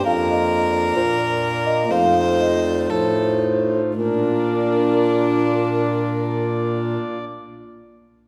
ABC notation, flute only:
X:1
M:4/4
L:1/16
Q:1/4=56
K:Bb
V:1 name="Flute"
f e2 d c d2 e f2 e d c4 | B16 |]